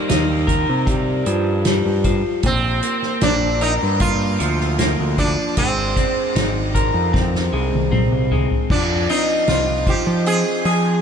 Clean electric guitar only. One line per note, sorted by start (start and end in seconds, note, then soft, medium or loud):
0.00 1.27 D#3 medium
0.00 0.85 G3 medium
0.09 2.05 D#4 medium
0.47 3.61 A#4 medium
0.87 1.65 G3 medium
1.26 2.04 F3 medium
1.66 2.44 G3 medium
2.05 2.44 F3 medium
2.44 4.40 A#2 medium
2.83 3.99 A#3 medium
3.22 5.18 D4 medium
3.61 5.57 A#4 medium
4.00 4.78 A#3 medium
4.39 5.17 F3 medium
4.79 5.57 A#3 medium
5.18 5.58 F3 medium
5.58 7.52 G#3 medium
5.96 7.12 C4 medium
6.36 8.31 D#4 medium
6.75 8.70 A#4 medium
7.13 7.90 C4 medium
7.53 8.31 G#3 medium
7.92 8.70 C4 medium
8.32 8.70 G#3 medium
8.71 9.87 F3 medium
9.09 10.26 C4 medium
9.48 11.02 F4 medium
9.88 11.02 F3 medium
10.27 11.02 C4 medium
10.66 11.02 G#4 medium